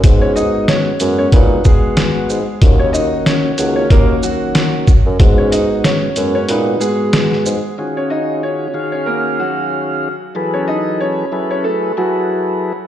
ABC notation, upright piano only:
X:1
M:4/4
L:1/16
Q:"Swing 16ths" 1/4=93
K:Ebm
V:1 name="Upright piano"
z [Dd] [Ee]2 [Dd]3 [Dd] [Ec]2 [A,A]6 | z [Dd] [Ee]2 [Dd]3 [Dd] [B,B]2 [G,G]6 | z [Dd] [Ee]2 [Dd]3 [Dd] [Ec]2 [A,A]6 | z [Dd] [Ee]2 [Dd]3 [Dd] [B,B]2 [G,G]6 |
z [Dd] [Ee]2 [Dd]3 [Dd] [=A,=A]2 [G,G]6 |]